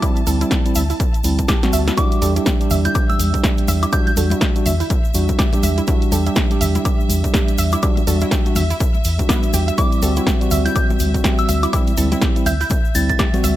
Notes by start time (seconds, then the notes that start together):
Already playing: A5
0.02 G3 C4 E4, kick, closed hi-hat, high woodblock, shaker
0.16 closed hi-hat, shaker
0.26 D2 G3 C4 E4 A4, open hi-hat, shaker
0.41 G3 C4 E4, closed hi-hat, shaker
0.51 G4, kick, snare, closed hi-hat, shaker
0.65 G3 C4 E4, closed hi-hat, shaker
0.75 D2 E5, open hi-hat, shaker
0.90 E4, open hi-hat, shaker
1.00 kick, closed hi-hat, shaker
1.14 closed hi-hat, shaker
1.24 D2 G3 C4 E4, open hi-hat, shaker
1.39 kick, closed hi-hat, shaker
1.48 G4, kick, snare, closed hi-hat, high woodblock, shaker
1.63 G3 C4 F#4, snare, closed hi-hat, shaker
1.73 D2 E5, open hi-hat, shaker
1.88 E4, snare, closed hi-hat, shaker
1.97 G3 D4 E4 F#4 E5 D6, kick, closed hi-hat, shaker
2.12 closed hi-hat, shaker
2.22 E2 G3 D4 G4 A4, open hi-hat, muted conga, shaker
2.36 G3 D4 E4 G4, closed hi-hat, shaker
2.46 G4, kick, snare, closed hi-hat, muted conga, shaker
2.60 G3 D4 G4, closed hi-hat, shaker
2.70 E2 E5, open hi-hat, low conga, shaker
2.85 E4 G6, closed hi-hat, muted conga, shaker
2.95 kick, closed hi-hat, high woodblock, shaker
3.09 E6, muted conga, shaker
3.19 E2, open hi-hat, high conga, shaker
3.33 G3 D4 G4, kick, closed hi-hat, shaker
3.44 G4, kick, snare, closed hi-hat, muted conga, shaker
3.57 closed hi-hat, shaker
3.68 E2 E5, open hi-hat, muted conga, shaker
3.83 E4, closed hi-hat, high woodblock, shaker
3.92 G3 D4 E4 F#4 G6, kick, closed hi-hat, high woodblock, shaker
4.07 G6, closed hi-hat, muted conga, shaker
4.16 E2 G3 D4 F#4 A4, open hi-hat, high conga, shaker
4.30 G3 D4 E4 F#4, closed hi-hat, muted conga, shaker
4.41 G4, kick, snare, closed hi-hat, shaker
4.55 G3 D4 F#4, closed hi-hat, shaker
4.66 E2 E5, open hi-hat, muted conga, low conga, shaker
4.80 E4, open hi-hat, shaker
4.90 kick, closed hi-hat, muted conga, shaker
5.04 shaker
5.14 E2 G3 D4 F#4, open hi-hat, shaker
5.29 kick, closed hi-hat, muted conga, shaker
5.39 G4, kick, snare, closed hi-hat, high conga, high woodblock, shaker
5.53 G3 D4 G4, closed hi-hat, muted conga, shaker
5.63 E2 E5, open hi-hat, high conga, shaker
5.78 E4, closed hi-hat, shaker
5.87 G3 D4 E4 F#4, kick, closed hi-hat, muted conga, shaker
6.02 closed hi-hat, shaker
6.12 E2 G3 D4 G4 A4, open hi-hat, muted conga, shaker
6.26 G3 D4 E4 G4, closed hi-hat, shaker
6.36 G4, kick, snare, closed hi-hat, shaker
6.50 G3 D4 G4, closed hi-hat, muted conga, shaker
6.61 E2 E5, open hi-hat, low conga, shaker
6.75 E4, closed hi-hat, muted conga, shaker
6.85 kick, closed hi-hat, high woodblock, shaker
7.00 shaker
7.09 E2, open hi-hat, muted conga, high conga, shaker
7.23 G3 D4 G4, kick, closed hi-hat, shaker
7.34 G4, kick, snare, closed hi-hat, muted conga, shaker
7.48 closed hi-hat, shaker
7.58 E2 E5, open hi-hat, shaker
7.72 E4, closed hi-hat, muted conga, high woodblock, shaker
7.82 G3 D4 E4 F#4, kick, closed hi-hat, high woodblock, shaker
7.97 closed hi-hat, muted conga, shaker
8.07 E2 G3 D4 F#4 A4, open hi-hat, high conga, shaker
8.21 G3 D4 E4 F#4, closed hi-hat, shaker
8.31 G4, kick, snare, closed hi-hat, muted conga, shaker
8.46 G3 D4 F#4, closed hi-hat, shaker
8.55 E2 E5, open hi-hat, muted conga, low conga, shaker
8.70 E4, open hi-hat, shaker
8.80 kick, closed hi-hat, shaker
8.94 muted conga, shaker
9.04 E2, open hi-hat, shaker
9.18 G3 D4 F#4, kick, closed hi-hat, muted conga, shaker
9.29 B3, kick, snare, closed hi-hat, high conga, high woodblock, shaker
9.43 closed hi-hat, shaker
9.53 E2 G4, open hi-hat, muted conga, high conga, shaker
9.68 E5, closed hi-hat, shaker
9.78 G3 C4 E4 D6, kick, closed hi-hat, shaker
9.92 closed hi-hat, shaker
10.02 D2 G3 C4 F#4 A4, open hi-hat, muted conga, shaker
10.16 G3 C4 E4 F#4, closed hi-hat, shaker
10.27 G4, kick, snare, closed hi-hat, muted conga, shaker
10.40 G3 C4 F#4, closed hi-hat, shaker
10.51 D2 E5, open hi-hat, low conga, shaker
10.65 E4 G6, closed hi-hat, muted conga, shaker
10.76 kick, closed hi-hat, high woodblock, shaker
10.90 muted conga, shaker
10.99 D2, open hi-hat, high conga, shaker
11.14 G3 C4 F#4, kick, closed hi-hat, shaker
11.24 G4, kick, snare, closed hi-hat, muted conga, shaker
11.38 E6, closed hi-hat, shaker
11.49 D2 E5, open hi-hat, muted conga, shaker
11.63 E4, closed hi-hat, high woodblock, shaker
11.73 G3 C4 E4, kick, closed hi-hat, high woodblock, shaker
11.87 closed hi-hat, muted conga, shaker
11.97 D2 G3 C4 E4 A4, open hi-hat, high conga, shaker
12.11 G3 C4 E4, closed hi-hat, muted conga, shaker
12.21 G4, kick, snare, closed hi-hat, shaker
12.36 G3 C4 E4, closed hi-hat, shaker
12.46 D2 E5 G6, open hi-hat, muted conga, low conga, shaker
12.61 E4 G6, open hi-hat, shaker
12.70 kick, closed hi-hat, muted conga, shaker
12.85 shaker
12.95 D2 G3 C4 E4 A6, open hi-hat, shaker
13.09 A6, kick, closed hi-hat, muted conga, shaker
13.19 G4, kick, snare, closed hi-hat, high conga, high woodblock, shaker
13.33 G3 C4 F#4, closed hi-hat, muted conga, shaker
13.44 D2 E5, open hi-hat, high conga, shaker